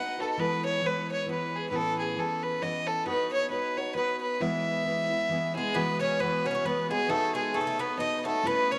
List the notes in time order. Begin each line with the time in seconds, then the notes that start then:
Already playing: B3 D#4 F#4 B4 F#5
0.18 D#4 F#4 A4 B4
0.23 A4
0.30 A4
0.37 E3 G#3 B3 E4 B4
0.66 C#5
0.81 E3 G#3 B3 E4
0.86 B4
1.12 C#5
1.26 E3 G#3 B3 E4
1.31 B4
1.56 G#4
1.70 A2 E3 B3 C#4 E4 B4
1.76 A4
1.99 G#4
2.16 E3 B3 C#4 E4 A4
2.43 B4
2.61 E3 B3 C#4 E4 D#5
2.87 A4
3.06 B3 D#4 F#4 B4 C#5
3.33 C#5
3.49 B3 D#4 F#4 B4 C#5
3.76 D#4 F#4 C#5
3.95 B3 D#4 F#4 B4 C#5
4.22 B4
4.40 E3 G#3 B3 E4 E5
4.85 E3 G#3 B3 E4
5.10 G#3 B3 E4
5.29 E3 G#3 B3 E4
5.55 G#3 B3 E4 G#4
5.74 E3 G#3 B3 F#4 B4
6.00 C#4 C#5
6.19 E3 G#3 B3 F#4 B4
6.44 G#3 B3 C#4 F#4 C#5
6.51 C#4
6.63 E3 G#3 B3 F#4 B4
6.90 G#3 B3 F#4 G#4
7.08 A3 B3 D#4 F#4 A4 C#5
7.35 G#3 G#4
7.54 A3 B3 D#4 F#4 A4 C#5
7.61 A3
7.67 A3
7.79 B3 B4
7.97 B3 D#4 F#4 C#5 D#5
8.19 B3
8.24 A3 D#4 F#4 A4 C#5
8.43 A3 B3 C#4 E4 B4
8.71 C#4 C#5